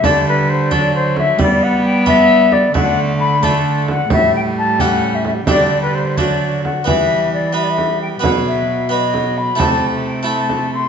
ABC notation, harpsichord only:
X:1
M:6/8
L:1/8
Q:3/8=88
K:Dmix
V:1 name="Harpsichord"
[A,A]3 [DA]3 | z3 [DB]3 | z3 [A,DA]3 | z3 [A,^CG]3 |
[A,DG]3 [A,DF]3 | [B,B]3 [B,B]3 | [B,B]3 [B,B]3 | [A,EA]3 [A,EA]3 |]
V:2 name="Harpsichord" clef=bass
D,6 | G,6 | D,6 | A,,6 |
D,4- D, z | E,6 | B,,6 | C,6 |]